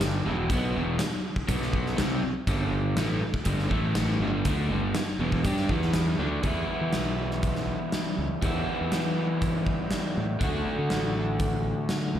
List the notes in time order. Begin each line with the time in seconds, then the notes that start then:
Already playing: G1 G2 D3 G3
0.01 snare, closed hi-hat
0.25 E1 E2 B2 E3
0.50 B1 B2 F#3 B3, kick, closed hi-hat
0.75 E1 E2 B2 E3
0.99 snare, closed hi-hat
1.36 kick
1.48 B1 B2 F#3 B3, kick, closed hi-hat
1.62 snare
1.73 kick
1.86 snare
1.97 C2 C3 G3 C4, snare, closed hi-hat
2.23 muted overdriven electric guitar stroke, muted fingered electric bass stroke
2.47 G1 G2 D3 G3, kick, closed hi-hat
2.97 A1 A2 E3 A3, snare, closed hi-hat
3.22 muted fingered electric bass stroke, muted overdriven electric guitar stroke
3.34 kick
3.45 G1 G2 D3 G3, kick, closed hi-hat
3.59 snare
3.69 A1 A2 E3 A3, kick
3.95 snare, closed hi-hat
4.20 G1 G2 D3 G3
4.45 D2 D3 A3 D4, kick, closed hi-hat
4.69 G1 G2 D3 G3
4.95 snare, closed hi-hat
5.19 E1 E2 B2 E3
5.32 kick
5.44 G2 G3 D4 G4, kick, closed hi-hat
5.57 snare
5.69 E2 E3 B3 E4, kick
5.82 snare
5.94 snare, closed hi-hat
6.19 D2 D3 A3 D4
6.42 E2 E3 G3 B3 E4, kick, closed hi-hat
6.81 E3
6.93 B1, snare, closed hi-hat
7.31 snare
7.43 kick, closed hi-hat
7.55 snare
7.92 snare, closed hi-hat
8.18 C#2
8.42 E2 E3 G3 B3 E4, kick, closed hi-hat
8.81 E2
8.92 E3, snare, closed hi-hat
9.42 kick, closed hi-hat
9.66 kick
9.91 snare, closed hi-hat
10.17 A2
10.39 D2 D3 A3 D4, kick, closed hi-hat
10.44 F#4
10.79 D3
10.90 A1, snare, closed hi-hat
11.40 kick, closed hi-hat
11.89 snare, closed hi-hat
12.15 C#2